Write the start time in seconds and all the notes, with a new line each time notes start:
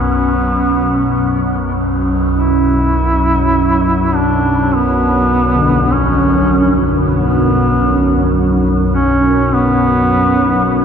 Already playing: B1 F#2 B3
2.37 B1 F#2 E4
4.15 D4
4.75 B3
5.56 D3
5.92 C#4
7.13 B3
8.94 C#4
9.54 B3